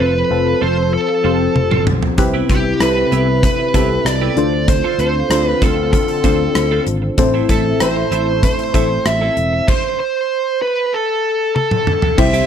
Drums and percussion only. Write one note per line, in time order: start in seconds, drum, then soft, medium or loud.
1.56 high tom medium
1.71 mid tom medium
1.87 mid tom medium
2.03 floor tom medium
2.18 kick loud
2.18 closed hi-hat medium
2.49 kick medium
2.49 closed hi-hat medium
2.80 cross-stick loud
2.80 closed hi-hat medium
3.12 closed hi-hat medium
3.43 kick medium
3.43 closed hi-hat medium
3.74 kick medium
3.74 closed hi-hat medium
4.06 cross-stick loud
4.06 closed hi-hat medium
4.37 closed hi-hat medium
4.68 kick loud
4.68 closed hi-hat medium
4.99 closed hi-hat medium
5.31 cross-stick loud
5.31 closed hi-hat medium
5.62 kick loud
5.62 closed hi-hat medium
5.93 kick medium
5.93 closed hi-hat medium
6.08 closed hi-hat soft
6.24 kick medium
6.24 closed hi-hat medium
6.55 cross-stick loud
6.55 closed hi-hat medium
6.87 closed hi-hat medium
7.18 kick loud
7.18 closed hi-hat medium
7.49 kick medium
7.49 closed hi-hat medium
7.80 cross-stick loud
7.80 closed hi-hat medium
8.12 closed hi-hat medium
8.43 kick medium
8.43 closed hi-hat medium
8.59 closed hi-hat soft
8.74 kick medium
8.74 closed hi-hat medium
9.06 cross-stick loud
9.06 closed hi-hat medium
9.37 closed hi-hat medium
9.68 kick loud
9.68 crash medium
11.56 high tom medium
11.71 mid tom medium
11.87 mid tom medium
12.02 floor tom medium
12.18 kick loud
12.18 crash loud
12.34 closed hi-hat medium